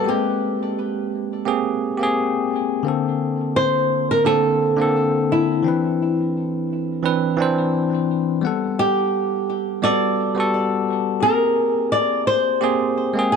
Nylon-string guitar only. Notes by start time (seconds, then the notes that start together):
0.09 G4
3.56 C5
4.11 A#4
4.26 A4
5.32 E4
8.79 G4
9.83 D5
11.23 A#4
11.92 D5
12.27 C5
13.32 G#4